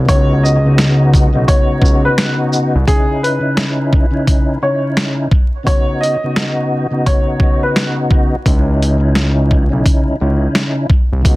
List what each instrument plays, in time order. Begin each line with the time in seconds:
0.05 analog synth bass C#2, tonewheel organ C#3 B3 D#4 F#4, upright piano C#5, kick, closed hi-hat
0.43 upright piano D#5, shaker
0.65 tonewheel organ C#3 B3 D#4 F#4
0.78 snare, closed hi-hat
1.14 kick, closed hi-hat, shaker
1.33 analog synth bass B1, tonewheel organ C#3 B3 D#4 F#4
1.48 upright piano C#5, kick, closed hi-hat
1.70 analog synth bass C#2
1.82 analog synth bass C#2, kick, shaker
2.05 upright piano B4
2.18 snare, closed hi-hat
2.53 shaker
2.75 analog synth bass C2
2.87 tonewheel organ C#3 C#4 D#4 E4, upright piano G#4, kick, closed hi-hat
3.23 upright piano B4, closed hi-hat
3.40 tonewheel organ C#3 C#4 D#4 E4
3.57 snare, closed hi-hat
3.93 kick
4.11 tonewheel organ C#3 C#4 D#4 E4
4.27 kick, closed hi-hat
4.62 tonewheel organ C#3 C#4 D#4 E4, upright piano C#5
4.97 snare, closed hi-hat
5.31 kick
5.63 tonewheel organ C#3 B3 D#4 F#4, upright piano C#5, kick
5.67 closed hi-hat
6.01 upright piano D#5, closed hi-hat
6.23 tonewheel organ C#3 B3 D#4 F#4
6.36 snare, closed hi-hat
6.91 tonewheel organ C#3 B3 D#4 F#4
7.06 upright piano C#5, kick, closed hi-hat
7.40 kick
7.63 upright piano B4
7.76 snare, closed hi-hat
8.11 kick
8.45 analog synth bass C#2, tonewheel organ C#3 C#4 D#4 E4, kick, closed hi-hat
8.83 closed hi-hat
8.98 tonewheel organ C#3 C#4 D#4 E4
9.15 snare, closed hi-hat
9.51 kick
9.69 analog synth bass B1, tonewheel organ C#3 C#4 D#4 E4
9.86 kick, closed hi-hat
10.07 analog synth bass C#2
10.20 analog synth bass C#2, tonewheel organ C#3 C#4 D#4 E4
10.55 snare, closed hi-hat
10.90 kick
11.12 analog synth bass C2
11.22 analog synth bass C#2, tonewheel organ C#3 B3 D#4 F#4, kick, closed hi-hat